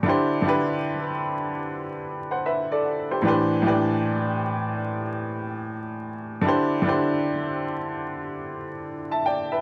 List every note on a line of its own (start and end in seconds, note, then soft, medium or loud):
0.03 0.35 D3 medium
0.03 0.36 D4 medium
0.03 0.37 E4 medium
0.08 0.38 G4 medium
0.08 0.38 C5 medium
0.42 1.57 D3 medium
0.42 1.58 D4 medium
0.42 1.58 E4 medium
0.47 1.59 G4 medium
0.47 1.60 B4 medium
2.31 2.45 C5 medium
2.31 2.45 F#5 medium
2.46 2.70 B4 medium
2.46 2.70 E5 medium
2.72 3.10 A4 medium
2.72 3.09 D5 medium
3.11 3.25 G4 medium
3.11 3.27 C5 medium
3.22 3.55 A2 medium
3.22 3.55 E3 medium
3.22 3.56 D4 medium
3.26 3.57 G4 medium
3.26 3.57 B4 medium
3.26 3.58 C5 medium
3.62 4.77 A2 medium
3.62 4.77 E3 medium
3.62 4.78 D4 medium
3.62 4.79 G4 medium
3.67 4.79 B4 medium
3.67 4.80 D5 medium
6.41 6.74 D3 medium
6.41 6.75 D4 medium
6.41 6.76 E4 medium
6.47 6.77 G4 medium
6.47 6.78 C5 medium
6.82 7.97 D3 medium
6.82 7.98 D4 medium
6.82 7.99 E4 medium
6.87 7.99 G4 medium
6.87 8.00 C5 medium
9.11 9.25 E5 medium
9.11 9.25 A5 medium
9.26 9.50 D5 medium
9.26 9.50 G5 medium
9.52 9.61 B4 medium
9.52 9.61 E5 medium